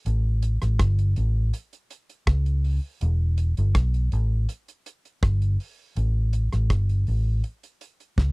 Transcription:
0.06 0.56 A1 loud
0.06 closed hi-hat loud
0.42 closed hi-hat medium
0.62 0.78 A1 medium
0.62 cross-stick medium
0.62 closed hi-hat medium
0.79 1.13 G1 medium
0.79 kick loud
0.79 cross-stick loud
0.79 closed hi-hat medium
0.99 closed hi-hat medium
1.16 1.50 A1 loud
1.16 closed hi-hat medium
1.53 closed hi-hat medium
1.73 closed hi-hat medium
1.90 closed hi-hat medium
2.10 closed hi-hat medium
2.27 2.78 C#2 loud
2.27 kick loud
2.27 cross-stick loud
2.27 closed hi-hat medium
2.46 closed hi-hat medium
2.64 open hi-hat medium
3.01 3.52 E1 loud
3.01 closed hi-hat loud
3.38 closed hi-hat medium
3.57 3.74 G1 medium
3.57 closed hi-hat medium
3.75 4.08 B1 medium
3.75 kick loud
3.75 cross-stick loud
3.75 closed hi-hat medium
3.94 closed hi-hat medium
4.12 4.46 A1 medium
4.12 closed hi-hat medium
4.49 closed hi-hat medium
4.68 closed hi-hat medium
4.86 closed hi-hat medium
5.05 closed hi-hat soft
5.23 5.56 G1 loud
5.23 kick loud
5.23 cross-stick loud
5.23 closed hi-hat medium
5.42 closed hi-hat medium
5.60 open hi-hat medium
5.96 6.47 A1 loud
5.96 closed hi-hat loud
6.33 closed hi-hat medium
6.52 6.69 A1 loud
6.52 cross-stick medium
6.52 closed hi-hat medium
6.70 7.03 G1 medium
6.70 kick loud
6.70 cross-stick loud
6.70 closed hi-hat medium
6.89 closed hi-hat medium
7.07 7.41 A1 loud
7.07 open hi-hat medium
7.44 closed hi-hat medium
7.63 closed hi-hat medium
7.81 closed hi-hat medium
8.00 closed hi-hat medium
8.18 8.32 C#2 loud
8.18 kick loud
8.18 snare medium

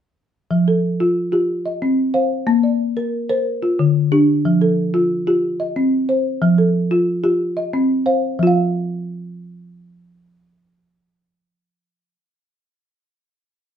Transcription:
0.51 0.83 F3 medium
0.68 1.17 A4 medium
1.00 1.31 F4 medium
1.32 1.49 F4 medium
1.32 1.65 G4 medium
1.66 2.15 D#5 medium
1.82 2.15 C4 medium
2.14 2.47 C5 medium
2.14 2.63 F5 medium
2.47 2.80 A#3 medium
2.63 3.13 D5 medium
2.97 3.28 A#4 medium
3.29 3.46 A#4 medium
3.29 3.62 C5 medium
3.63 4.12 F4 medium
3.79 4.12 D3 medium
4.12 4.45 D4 medium
4.12 4.61 G4 medium
4.45 4.78 F3 medium
4.62 5.10 A4 medium
4.94 5.26 F4 medium
5.27 5.43 F4 medium
5.27 5.60 G4 medium
5.60 6.09 D#5 medium
5.76 6.09 C4 medium
6.09 6.42 C5 medium
6.42 6.75 F3 medium
6.58 7.08 A4 medium
6.91 7.23 F4 medium
7.24 7.40 F4 medium
7.24 7.57 G4 medium
7.57 8.06 D#5 medium
7.73 8.06 C4 medium
8.06 8.39 C5 medium
8.06 8.46 F5 medium
8.39 11.67 F3 medium
8.39 11.71 F4 medium
8.47 11.75 F5 medium

